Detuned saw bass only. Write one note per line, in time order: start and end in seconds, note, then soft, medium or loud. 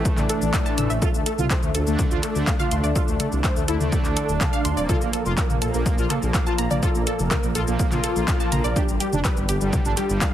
0.18 0.27 A1 medium
0.42 0.51 A1 medium
0.78 0.87 A1 medium
0.90 0.99 A1 medium
1.14 1.23 D2 medium
1.38 1.48 C2 medium
1.63 1.72 D2 medium
1.75 1.84 D2 loud
1.87 1.96 D2 medium
2.11 2.20 D2 medium
2.35 2.44 D2 medium
2.71 2.81 D2 loud
2.84 2.93 D2 medium
3.08 3.17 D2 medium
3.32 3.41 C2 medium
3.56 3.65 D2 medium
3.68 3.78 D2 loud
3.80 3.90 D2 medium
4.05 4.14 D2 medium
4.29 4.38 D1 medium
4.65 4.74 D2 loud
4.77 4.86 D1 medium
5.01 5.11 A#1 medium
5.26 5.35 F1 medium
5.50 5.59 A#1 medium
5.62 5.71 A#1 medium
5.74 5.83 A#1 medium
5.98 6.07 A#1 medium
6.22 6.31 A#1 medium
6.58 6.68 A#1 loud
6.71 6.80 A#1 medium
6.95 7.04 A#1 medium
7.19 7.28 F1 medium
7.43 7.52 A#1 medium
7.55 7.65 A#1 loud
7.68 7.77 A#1 medium
7.92 8.01 A#1 medium
8.16 8.25 A#1 medium
8.52 8.61 A#1 medium
8.64 8.73 A#1 medium
8.89 8.98 G1 medium
9.13 9.22 F1 medium
9.37 9.46 G1 medium
9.49 9.58 G1 loud
9.61 9.70 G1 medium
9.85 9.94 G1 medium
10.09 10.19 G1 medium